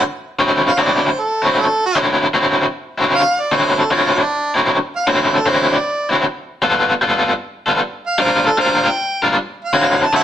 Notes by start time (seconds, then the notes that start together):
0.39 D3 F#3 C4 E4
0.67 F5
0.78 D3 F#3 C4 E4 D5
1.07 C5
1.20 A4
1.42 D3 F#3 C4 E4
1.48 C5
1.59 A4
1.86 F#4
1.96 D3 F#3 C4 E4
2.34 D3 F#3 C4 E4
2.98 D3 F#3 C4 E4
3.15 F5
3.40 D5
3.52 D3 F#3 C4 E4 C5
3.80 A4
3.91 D3 F#3 C4 E4 F4
4.19 D4
4.55 D3 F#3 C4 E4
4.96 F5
5.07 D3 F#3 C4 E4 C5
5.36 A4
5.46 D3 F#3 C4 E4 C5
5.73 D5
6.10 D3 F#3 C4 E4
6.62 G3 B3 F4 A4
7.02 G3 B3 F4 A4
7.66 G3 B3 F4 A4
8.07 F5
8.18 G3 D4 F4 A#4 C5
8.46 A4
8.58 G3 D4 F4 A#4 C5
8.86 G5
9.22 G3 D4 F4 A#4
9.65 F5
9.73 D3 F#3 C4 E4
10.03 A5
10.13 D3 F#3 C4 E4 E5 F#5 A5